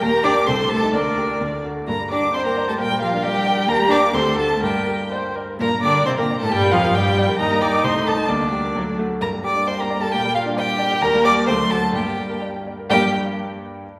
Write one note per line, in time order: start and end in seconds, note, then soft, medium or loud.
0.01 0.46 D#2 medium
0.01 0.09 A#3 loud
0.01 0.49 G4 loud
0.01 0.24 A#4 loud
0.01 0.26 A#5 loud
0.13 0.32 A#3 medium
0.23 0.31 D4 loud
0.23 0.44 G4 medium
0.23 0.33 D5 loud
0.23 0.48 D6 loud
0.37 0.48 A#4 medium
0.46 0.93 C2 medium
0.46 0.55 C4 medium
0.46 0.93 A4 medium
0.46 0.70 C5 loud
0.46 0.70 C6 loud
0.60 0.78 A3 medium
0.69 0.95 A3 medium
0.69 0.95 A4 loud
0.69 0.90 A4 medium
0.69 0.92 A5 loud
0.83 0.94 D#4 medium
0.93 1.39 D2 medium
0.93 1.64 D3 medium
0.93 1.64 D4 medium
0.93 1.63 A#4 medium
0.93 1.62 D5 loud
1.07 1.25 A#3 soft
1.18 1.36 G4 medium
1.30 1.41 A#4 medium
1.41 1.87 D2 medium
1.51 1.71 A3 soft
1.64 1.83 F#4 soft
1.76 1.88 A4 soft
1.87 2.77 G2 medium
1.87 1.95 A#3 medium
1.87 1.96 A#4 medium
1.87 2.10 A#5 loud
2.00 2.19 G3 medium
2.11 2.33 D4 medium
2.11 2.30 G4 medium
2.11 2.19 D5 medium
2.11 2.35 D6 medium
2.24 2.42 D4 medium
2.33 2.47 C4 medium
2.33 2.47 C5 medium
2.33 2.80 C5 medium
2.33 2.53 D5 medium
2.33 2.45 C6 loud
2.45 2.67 A#3 medium
2.45 2.68 A#4 medium
2.45 2.64 G5 medium
2.45 2.68 A#5 medium
2.57 2.75 D5 medium
2.68 2.72 A3 medium
2.68 2.80 G4 medium
2.68 2.73 A4 medium
2.68 2.73 A5 medium
2.78 3.65 A#2 medium
2.78 3.01 G3 medium
2.78 2.87 G4 medium
2.78 3.68 A#4 medium
2.78 3.01 G5 loud
2.91 3.08 G3 medium
3.02 3.10 F3 medium
3.02 3.25 F4 medium
3.02 3.19 G4 medium
3.02 3.25 F5 loud
3.13 3.31 D4 medium
3.22 3.68 G3 loud
3.22 3.68 G4 loud
3.22 3.42 D5 medium
3.22 3.70 G5 loud
3.35 3.53 G5 medium
3.46 3.64 D5 medium
3.57 3.68 G4 medium
3.67 4.13 D#2 medium
3.67 3.88 A#3 loud
3.67 4.13 G4 loud
3.67 3.77 A#4 loud
3.67 3.92 A#5 loud
3.79 3.98 G3 medium
3.89 3.97 D4 loud
3.89 4.09 G4 medium
3.89 4.00 D5 loud
3.89 4.16 D6 loud
4.01 4.14 A#3 medium
4.13 4.60 D2 medium
4.13 4.38 C4 medium
4.13 4.61 A4 medium
4.13 4.37 C5 loud
4.13 4.38 C6 loud
4.25 4.45 A3 medium
4.37 4.62 A3 medium
4.37 4.57 F#4 medium
4.37 4.45 A4 medium
4.37 4.62 A5 loud
4.49 4.62 A4 medium
4.61 5.57 G2 medium
4.61 5.11 G3 medium
4.61 5.10 G4 medium
4.61 5.05 A#4 medium
4.61 5.11 G5 medium
4.74 4.94 A#3 medium
4.88 5.07 G4 medium
5.00 5.19 A#4 medium
5.11 5.37 C5 medium
5.11 5.31 D5 medium
5.25 5.44 G5 medium
5.36 5.60 A#4 medium
5.36 5.56 D5 soft
5.49 5.60 A#4 soft
5.59 6.49 G2 medium
5.59 5.67 A#2 loud
5.59 5.81 A#3 loud
5.59 5.68 A#4 loud
5.59 5.82 A#5 loud
5.73 5.91 A#3 medium
5.82 6.06 D3 loud
5.82 6.06 D4 loud
5.82 6.02 G4 medium
5.82 6.07 D5 medium
5.82 6.05 D6 loud
5.95 6.13 A#4 medium
6.05 6.17 C3 loud
6.05 6.11 C4 loud
6.05 6.16 C5 loud
6.05 6.25 D5 medium
6.05 6.10 C6 loud
6.17 6.26 A#2 medium
6.17 6.26 A#3 loud
6.17 6.25 A#4 medium
6.17 6.36 G5 medium
6.17 6.40 A#5 loud
6.30 6.47 D5 medium
6.39 6.53 A2 loud
6.39 6.51 A3 medium
6.39 6.51 A4 medium
6.39 6.52 A#4 medium
6.39 6.53 A5 loud
6.49 6.74 G2 loud
6.49 7.37 A#2 medium
6.49 6.74 G3 loud
6.49 6.71 G4 loud
6.49 6.74 G5 loud
6.63 6.80 A#3 medium
6.71 6.95 F2 loud
6.71 6.96 F3 loud
6.71 6.79 F4 loud
6.71 6.91 G4 medium
6.71 6.96 F5 loud
6.84 7.01 A#4 medium
6.94 7.38 G2 loud
6.94 7.39 G3 loud
6.94 7.38 G4 loud
6.94 7.13 D5 medium
6.94 7.38 G5 loud
7.07 7.24 G5 medium
7.18 7.35 D5 medium
7.29 7.39 A#4 medium
7.38 7.83 D#2 medium
7.38 7.85 G3 medium
7.38 8.30 D#4 medium
7.38 7.62 A#4 loud
7.38 7.63 A#5 loud
7.51 7.69 A#3 medium
7.61 7.80 G4 medium
7.61 7.83 D5 loud
7.61 7.86 D6 loud
7.72 7.84 A#4 medium
7.83 8.28 C2 medium
7.83 8.31 A3 medium
7.83 7.92 C5 medium
7.83 8.08 C6 loud
7.94 8.13 A3 medium
8.05 8.24 A4 medium
8.05 8.15 A4 loud
8.05 8.30 A5 loud
8.17 8.29 D#4 medium
8.29 8.74 D2 medium
8.29 8.77 G3 medium
8.29 8.74 A#3 medium
8.29 8.98 D4 medium
8.29 8.98 D5 loud
8.40 8.59 A#3 medium
8.52 8.71 G4 medium
8.64 8.76 A#4 medium
8.75 9.21 D2 medium
8.75 8.83 F#3 medium
8.75 9.01 F#3 medium
8.87 9.06 A3 medium
8.98 9.06 A3 medium
8.98 9.17 F#4 medium
9.10 9.22 A4 medium
9.21 10.10 G2 medium
9.21 10.99 G3 medium
9.21 10.99 A#3 medium
9.21 9.29 A#4 medium
9.21 9.29 A#5 loud
9.32 9.51 G3 medium
9.44 9.63 G4 medium
9.44 9.69 D5 medium
9.44 9.69 D6 medium
9.55 9.74 D4 medium
9.67 9.78 C5 loud
9.67 9.85 D5 medium
9.67 9.81 C6 medium
9.78 9.87 A#4 medium
9.78 9.97 G5 medium
9.78 10.03 A#5 medium
9.90 10.08 D5 medium
10.01 10.13 G4 medium
10.01 10.11 A4 medium
10.01 10.13 A5 loud
10.12 11.00 A#2 medium
10.12 10.20 G4 loud
10.12 10.34 G5 loud
10.24 10.42 G3 medium
10.35 10.57 F4 medium
10.35 10.53 G4 medium
10.35 10.43 F5 loud
10.46 10.64 D4 medium
10.57 11.05 G4 loud
10.57 10.75 D5 medium
10.57 11.03 G5 loud
10.68 10.86 G5 medium
10.79 10.97 D5 medium
10.91 11.02 G4 medium
11.02 11.46 D#2 loud
11.02 11.50 G3 loud
11.02 11.50 A#3 loud
11.02 11.27 A#4 loud
11.02 11.24 A#5 loud
11.13 11.32 G3 medium
11.25 11.43 G4 medium
11.25 11.46 D5 loud
11.25 11.33 D6 loud
11.37 11.48 A#3 medium
11.47 11.93 D2 medium
11.47 11.96 F#3 medium
11.47 11.96 A3 medium
11.47 11.55 C5 loud
11.47 11.72 C6 loud
11.59 11.77 A3 medium
11.70 11.89 F#4 medium
11.70 11.78 A4 medium
11.70 11.94 A5 loud
11.81 11.94 A4 medium
11.93 12.87 G2 medium
11.93 12.69 G3 medium
11.93 12.70 A#3 medium
11.93 12.41 G4 medium
11.93 12.41 G5 medium
12.05 12.25 A#3 medium
12.18 12.37 G4 medium
12.30 12.49 A#4 medium
12.41 12.61 D5 medium
12.55 12.74 G5 soft
12.67 12.86 D5 soft
12.79 12.91 A#4 medium
12.90 13.16 G2 medium
12.90 13.16 G3 medium
12.90 13.17 G3 medium
12.90 13.16 A#3 medium
12.90 13.16 D4 medium
12.90 13.16 G4 medium
12.90 13.16 G4 loud
12.90 13.16 D5 medium
12.90 13.16 G5 loud